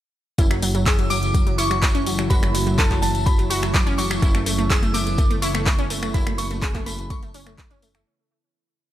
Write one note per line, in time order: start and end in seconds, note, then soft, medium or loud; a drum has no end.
0.38 2.28 F#1 medium
0.38 4.19 C#3 medium
0.38 8.02 E3 medium
0.38 4.19 F#3 medium
0.38 8.02 A3 medium
0.38 0.46 E4 loud
0.38 8.02 E4 medium
0.38 kick loud
0.38 closed hi-hat medium
0.38 tambourine soft
0.51 0.58 F#3 medium
0.51 finger snap medium
0.51 closed hi-hat soft
0.51 tambourine soft
0.62 0.70 F#3 medium
0.62 open hi-hat loud
0.62 tambourine medium
0.75 0.82 F#3 medium
0.75 closed hi-hat soft
0.75 tambourine soft
0.86 0.94 G#4 loud
0.86 0.97 E6 loud
0.86 kick loud
0.86 clap loud
0.86 closed hi-hat medium
0.86 tambourine medium
0.99 1.06 F#3 medium
0.99 closed hi-hat soft
0.99 tambourine soft
1.10 1.18 F#3 medium
1.10 1.60 D6 loud
1.10 open hi-hat medium
1.10 tambourine medium
1.23 closed hi-hat soft
1.23 tambourine soft
1.34 1.42 F#3 medium
1.34 kick loud
1.34 closed hi-hat medium
1.34 tambourine medium
1.46 1.54 F#3 medium
1.46 closed hi-hat soft
1.46 tambourine soft
1.58 1.66 E4 medium
1.58 2.32 C#6 loud
1.58 open hi-hat loud
1.58 tambourine loud
1.71 1.78 F#3 medium
1.71 finger snap medium
1.71 closed hi-hat soft
1.71 tambourine soft
1.82 1.90 F#3 medium
1.82 kick loud
1.82 clap loud
1.82 closed hi-hat medium
1.82 tambourine medium
1.95 2.02 C#4 loud
1.95 closed hi-hat soft
1.95 tambourine soft
2.06 2.14 F#3 medium
2.06 open hi-hat loud
2.06 tambourine medium
2.18 2.26 F#3 medium
2.18 finger snap medium
2.18 closed hi-hat soft
2.18 tambourine soft
2.30 4.20 F#1 medium
2.30 2.38 F#4 loud
2.30 2.80 B5 loud
2.30 kick loud
2.30 closed hi-hat medium
2.30 tambourine medium
2.43 2.50 F#3 medium
2.43 finger snap medium
2.43 closed hi-hat soft
2.43 tambourine soft
2.54 2.62 F#3 medium
2.54 open hi-hat loud
2.54 tambourine medium
2.67 2.74 F#3 medium
2.67 closed hi-hat soft
2.67 tambourine soft
2.78 2.86 A4 loud
2.78 3.01 A5 medium
2.78 kick loud
2.78 clap loud
2.78 closed hi-hat medium
2.78 tambourine medium
2.90 2.98 F#3 medium
2.90 kick medium
2.90 clap soft
2.90 closed hi-hat soft
2.90 tambourine soft
3.02 3.10 F#3 medium
3.02 3.27 A5 medium
3.02 open hi-hat medium
3.02 tambourine medium
3.15 closed hi-hat soft
3.15 tambourine soft
3.26 3.34 F#3 medium
3.26 3.49 B5 loud
3.26 kick loud
3.26 closed hi-hat medium
3.26 tambourine medium
3.39 3.46 F#3 medium
3.39 closed hi-hat soft
3.39 tambourine soft
3.50 3.58 F#4 medium
3.50 3.75 C#6 loud
3.50 open hi-hat loud
3.50 tambourine medium
3.63 3.70 F#3 medium
3.63 finger snap medium
3.63 closed hi-hat soft
3.63 tambourine soft
3.74 3.82 F#3 medium
3.74 3.99 D6 loud
3.74 kick loud
3.74 clap loud
3.74 closed hi-hat medium
3.74 tambourine medium
3.87 3.94 C#4 loud
3.87 closed hi-hat soft
3.87 tambourine soft
3.98 4.06 F#3 medium
3.98 4.72 C#6 loud
3.98 open hi-hat loud
3.98 tambourine medium
4.11 4.18 F#3 medium
4.11 finger snap medium
4.11 closed hi-hat soft
4.11 tambourine soft
4.22 6.12 F#1 medium
4.22 8.03 C#3 medium
4.22 8.03 B3 medium
4.22 4.30 E4 loud
4.22 kick loud
4.22 closed hi-hat medium
4.22 tambourine medium
4.35 4.42 A3 medium
4.35 finger snap medium
4.35 closed hi-hat soft
4.35 tambourine soft
4.46 4.54 A3 medium
4.46 open hi-hat loud
4.46 tambourine loud
4.58 4.66 A3 medium
4.58 closed hi-hat soft
4.58 tambourine soft
4.70 4.78 G#4 loud
4.70 4.95 E6 loud
4.70 kick loud
4.70 clap loud
4.70 closed hi-hat medium
4.70 tambourine medium
4.82 4.90 A3 medium
4.82 closed hi-hat soft
4.82 tambourine soft
4.94 5.02 A3 medium
4.94 5.44 D6 loud
4.94 open hi-hat loud
4.94 tambourine loud
5.07 closed hi-hat soft
5.07 tambourine soft
5.18 5.26 A3 medium
5.18 kick loud
5.18 closed hi-hat medium
5.18 tambourine medium
5.30 5.38 A3 medium
5.30 closed hi-hat soft
5.30 tambourine soft
5.42 5.50 E4 medium
5.42 6.10 C#6 loud
5.42 open hi-hat loud
5.42 tambourine loud
5.55 5.62 A3 medium
5.55 finger snap medium
5.55 closed hi-hat soft
5.55 tambourine soft
5.66 5.74 A3 medium
5.66 kick loud
5.66 clap loud
5.66 closed hi-hat medium
5.66 tambourine medium
5.79 5.86 C#4 medium
5.79 closed hi-hat soft
5.79 tambourine soft
5.90 5.98 A3 medium
5.90 open hi-hat loud
5.90 tambourine loud
6.03 6.10 A3 medium
6.03 finger snap medium
6.03 closed hi-hat soft
6.03 tambourine soft
6.14 8.04 F#1 medium
6.14 6.22 E4 loud
6.14 6.39 B5 loud
6.14 kick loud
6.14 closed hi-hat medium
6.14 tambourine medium
6.27 6.34 A3 medium
6.27 finger snap medium
6.27 closed hi-hat soft
6.27 tambourine soft
6.38 6.46 A3 medium
6.38 6.88 C#6 loud
6.38 open hi-hat loud
6.38 tambourine loud
6.51 6.58 A3 medium
6.51 closed hi-hat soft
6.51 tambourine soft
6.62 6.70 G#4 loud
6.62 kick loud
6.62 clap loud
6.62 closed hi-hat medium
6.62 tambourine medium
6.74 6.82 A3 medium
6.74 kick medium
6.74 clap soft
6.74 closed hi-hat soft
6.74 tambourine soft
6.86 6.94 A3 medium
6.86 7.11 B5 medium
6.86 open hi-hat medium
6.86 tambourine loud
6.99 closed hi-hat soft
6.99 tambourine soft
7.10 7.18 A3 medium
7.10 7.78 C#6 medium
7.10 kick loud
7.10 closed hi-hat medium
7.10 tambourine medium
7.22 7.30 A3 medium
7.22 closed hi-hat soft
7.22 tambourine soft
7.34 7.42 C#4 medium
7.34 open hi-hat loud
7.34 tambourine medium
7.47 7.54 A3 medium
7.47 finger snap medium
7.47 tambourine soft
7.58 7.66 A3 medium
7.58 kick loud
7.58 clap loud
7.58 closed hi-hat medium
7.58 tambourine soft
7.71 7.78 C#4 loud
7.71 closed hi-hat soft
7.71 tambourine soft
7.82 7.90 A3 medium
7.82 open hi-hat loud
7.82 tambourine loud
7.95 8.02 A3 medium
7.95 finger snap medium
7.95 closed hi-hat soft
7.95 tambourine soft